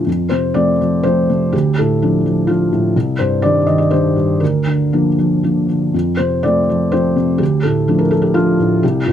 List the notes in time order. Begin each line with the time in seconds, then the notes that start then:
0.06 F2
0.29 C3 C5
0.54 F3 A3 C4 D5
0.81 F3
1.03 F3 A3 C4 C5
1.30 C3
1.53 D2 G4
1.78 A2 A4
2.02 F3 D4
2.26 F3
2.47 F3 D4 F4
2.73 A2
2.96 C2
3.19 G2 C5
3.42 D#3 G3 D4 D5
3.67 D#3 D#5
3.78 D5
3.91 D#3 G3 D4 C5
4.16 G2
4.40 D2 A#4
4.67 D3
4.93 F3 A#3 D4
5.19 F3
5.43 F3 A#3 D4
5.69 D3
5.94 F2
6.17 C3 C5
6.43 F3 A3 C4 D5
6.69 F3
6.92 F3 A3 C4 C5
7.16 C3
7.38 D2 G4
7.63 A2 A4
7.88 F3 A3 D4
7.98 A#4
8.11 F3 A4
8.22 G4
8.34 F3 A3 D4 F4
8.60 A2
8.83 C2 G4
9.06 G2 F4